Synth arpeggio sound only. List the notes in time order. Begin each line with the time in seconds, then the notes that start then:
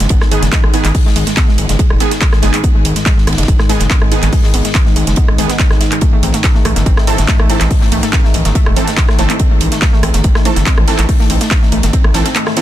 0.00 G#3
0.10 B3
0.21 G#3
0.42 G#3
0.52 G#3
0.63 G#3
0.74 B3
0.85 G#3
1.06 G#3
1.16 G#3
1.27 G#3
1.37 B3
1.48 G#3
1.69 G#3
1.79 G#3
1.90 G#3
2.00 B3
2.11 G#3
2.33 G#3
2.43 G#3
2.54 G#3
2.64 B3
2.75 G#3
2.96 G#3
3.06 G#3
3.17 G#3
3.27 B3
3.38 G#3
3.59 G#3
3.69 G#3
3.80 G#3
3.90 B3
4.02 G#3
4.23 G#3
4.33 G#3
4.44 G#3
4.54 B3
4.65 G#3
4.86 G#3
4.96 G#3
5.07 G#3
5.17 B3
5.28 G#3
5.38 G#3
5.49 B3
5.71 G#3
5.81 G#3
5.92 G#3
6.02 A3
6.13 A3
6.23 C4
6.34 A3
6.55 A3
6.65 A3
6.76 A3
6.86 C4
6.97 A3
7.18 A3
7.28 A3
7.39 A3
7.50 C4
7.61 A3
7.82 A3
7.92 A3
8.03 A3
8.13 C4
8.24 A3
8.45 A3
8.55 A3
8.66 A3
8.76 C4
8.87 A3
9.09 A3
9.19 A3
9.30 A3
9.40 C4
9.51 A3
9.72 A3
9.82 A3
9.93 A3
10.03 C4
10.14 A3
10.35 A3
10.45 A3
10.57 A3
10.67 C4
10.78 A3
10.99 A3
11.09 A3
11.20 A3
11.30 C4
11.41 A3
11.62 A3
11.72 A3
11.83 A3
11.93 C4
12.04 A3
12.15 A3
12.26 C4
12.35 A3
12.47 A3
12.57 B3